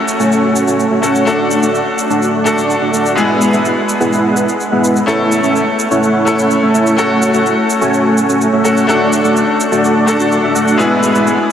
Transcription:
Already playing: A3 C#4 F#4 A4, downlifter
0.08 shaker
0.19 A3 C#4 F#4 C#5 G#5, shaker
0.32 shaker
0.56 shaker
0.67 A3 C#4 F#4 C#5 G#5, shaker
0.80 shaker
0.91 A3 C#4 F#4 C#5 E5
1.02 A3 C#4 F#4 A4 C#5 F#5, shaker
1.15 shaker
1.25 A3 D4 F#4 A4 F#5, shaker
1.51 shaker
1.62 A3 D4 F#4 D5 F#5, shaker
1.75 shaker
1.99 shaker
2.10 A3 D4 F#4 D5 A5, shaker
2.22 shaker
2.44 A3 D4 F#4 A4, shaker
2.57 A3 D4 F#4 D5 A5, shaker
2.70 shaker
2.81 A3 D4 F#4 D5 E5
2.93 A3 D4 F#4 D5 F#5, shaker
3.06 shaker
3.15 G#3 B3 E4 G#4 B4 E5, shaker
3.41 shaker
3.53 G#3 B3 E4 B4 E5, shaker
3.65 shaker
3.89 shaker
4.00 G#3 B3 E4 B4 F#5, shaker
4.13 shaker
4.37 shaker
4.49 shaker
4.60 shaker
4.72 G#3 B3 E4 B4 F#5
4.84 shaker
4.96 shaker
5.06 A3 C#4 E4 A4 C#5 E5, shaker
5.32 shaker
5.43 A3 C#4 E4 C#5 E5, shaker
5.56 shaker
5.79 shaker
5.91 A3 C#4 E4 C#5 F#5, shaker
6.03 shaker
6.25 A3 C#4 E4 A4, shaker
6.38 A3 C#4 E4 C#5 F#5, shaker
6.51 shaker
6.62 A3 C#4 E4 C#5 E5
6.74 A3 C#4 E4 C#5 E5, shaker
6.87 shaker
6.97 A3 C#4 F#4 A4 C#5 F#5, shaker
7.22 shaker
7.33 A3 C#4 F#4 C#5 F#5, shaker
7.46 shaker
7.70 shaker
7.81 A3 C#4 F#4 C#5 G#5, shaker
7.94 shaker
8.18 shaker
8.29 A3 C#4 F#4 C#5 G#5, shaker
8.41 shaker
8.53 A3 C#4 F#4 C#5 E5
8.64 A3 C#4 F#4 A4 C#5 F#5, shaker
8.77 shaker
8.87 A3 D4 F#4 A4 D5 F#5, riser, shaker
9.13 shaker
9.24 A3 D4 F#4 D5 F#5, shaker
9.37 shaker
9.60 shaker
9.72 A3 D4 F#4 D5 A5, shaker
9.84 shaker
10.06 A3 D4 F#4 A4, shaker
10.19 A3 D4 F#4 D5 A5, shaker
10.32 shaker
10.43 A3 D4 F#4 D5 E5
10.55 A3 D4 F#4 D5 F#5, shaker
10.68 shaker
10.77 G#3 B3 E4 G#4 B4 E5, shaker
11.03 shaker
11.14 G#3 B3 E4 B4 E5, shaker
11.27 shaker

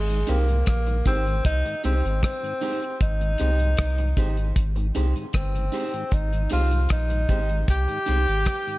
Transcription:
Already playing: G#1 G#3
0.10 G#2 D#3, closed hi-hat
0.27 C2 G#3 A#3 C4 D#4 G4 C5, closed hi-hat
0.48 G#2 D#3, closed hi-hat
0.66 A#1 A#3, kick, cross-stick, closed hi-hat
0.87 G#2 D#3, muted clean electric guitar stroke, closed hi-hat
1.05 G#1 G#3 C4 D#4 G4 C5, kick, closed hi-hat
1.26 G#2 D#3, closed hi-hat
1.45 C2 D#4, kick, closed hi-hat
1.65 G#2 D#3, muted clean electric guitar stroke, closed hi-hat
1.84 C2 G#3 C4 D#4 G4 C5, closed hi-hat
2.05 G#1, closed hi-hat
2.23 C4, kick, cross-stick, closed hi-hat
2.43 G#2 D#3, closed hi-hat
2.61 G#3 C4 D#4 G4 C5, open hi-hat
2.83 closed hi-hat
3.01 G#1 D#4, kick, closed hi-hat
3.21 G#2 D#3, closed hi-hat
3.38 C2 G#3 C4 D#4 G4 C5, closed hi-hat
3.59 G#2 D#3, closed hi-hat
3.77 C2, kick, cross-stick, closed hi-hat
3.98 G#2 D#3, muted clean electric guitar stroke, closed hi-hat
4.17 G#1 G#3 C4 D#4 G4 C5, kick, closed hi-hat
4.37 G#2 D#3, closed hi-hat
4.56 G#1, kick, closed hi-hat
4.76 G#2 D#3, muted clean electric guitar stroke, closed hi-hat
4.95 C2 G#3 C4 D#4 G4 C5, closed hi-hat
5.16 G#2 D#3, closed hi-hat
5.33 G1 C4, kick, cross-stick, closed hi-hat
5.54 G#2 D#3, closed hi-hat
5.72 G#3 C4 D#4 G4 C5, open hi-hat
5.93 G#2 D#3, muted clean electric guitar stroke, closed hi-hat
6.11 G#1 D#4, kick, closed hi-hat
6.33 G#2 D#3, closed hi-hat
6.50 C2 G#3 C4 D#4 F4 G4 C5, closed hi-hat
6.71 G#2 D#3, closed hi-hat
6.89 A#1 D#4, kick, cross-stick, closed hi-hat
7.10 G#2 D#3, muted clean electric guitar stroke, closed hi-hat
7.29 G#1 G#3 C4 D#4 G4 C5, kick, closed hi-hat
7.49 G#2 D#3, closed hi-hat
7.68 C2 G4, kick, closed hi-hat
7.88 G#2 D#3, muted clean electric guitar stroke, closed hi-hat
8.06 C2 G#3 C4 D#4 G4 C5, closed hi-hat
8.28 G#1, closed hi-hat
8.45 kick, cross-stick, closed hi-hat
8.67 G#2 D#3, closed hi-hat

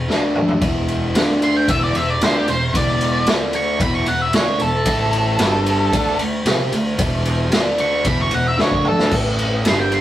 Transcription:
0.08 D2 D3 A3 D4, snare
0.35 mid tom
0.48 floor tom
0.61 E1 E2 B2 E3, kick, ride
0.88 ride
1.15 D2 D3 A3 D4, snare, ride
1.42 C6, ride
1.57 G5
1.68 E1 E2 B2 E3 E5, kick, ride
1.84 D5
1.94 E1 E2 B2 E5, ride
2.10 D5
2.21 D2 D3 A3 D4 C5, snare, ride
2.36 G4
2.48 E1 E2 B2 C5, ride
2.73 E1 E2 B2 E3 D5, kick, ride
3.01 ride
3.26 D2 D3 A3 D4, snare, ride
3.53 C#6, ride
3.79 E1 E2 B2 E3 B5, kick, ride
3.95 C#6
4.06 E1 E2 B2 F#5, ride
4.22 E5
4.33 D2 D3 A3 D4 C#5, snare, ride
4.59 E1 E2 B2 A4, ride
4.85 A1 A2 E3 A3, kick, ride
5.13 ride
5.38 G1 G2 D3 G3, snare, ride
5.66 ride
5.92 D2 D3 A3 D4, kick, ride
6.18 D2 D3 A3, ride
6.45 C3 C4 G4 C5, snare, ride
6.72 D2 D3 A3, ride
6.98 E1 E2 B2 E3, kick, ride
7.25 ride
7.52 D2 D3 A3 D4, snare, ride
7.78 C#6, ride
8.04 E1 E2 B2 E3 B5, kick, ride
8.21 C#6
8.31 E1 E2 B2 F#5, ride
8.48 E5
8.57 D2 D3 A3 D4, snare
8.62 C#5
8.71 kick
8.85 A4, mid tom
8.99 snare
9.11 A1 A2 E3 A3, kick, crash
9.39 ride
9.65 G1 G2 D3 G3 C6, snare, ride
9.80 G5
9.92 C6, ride

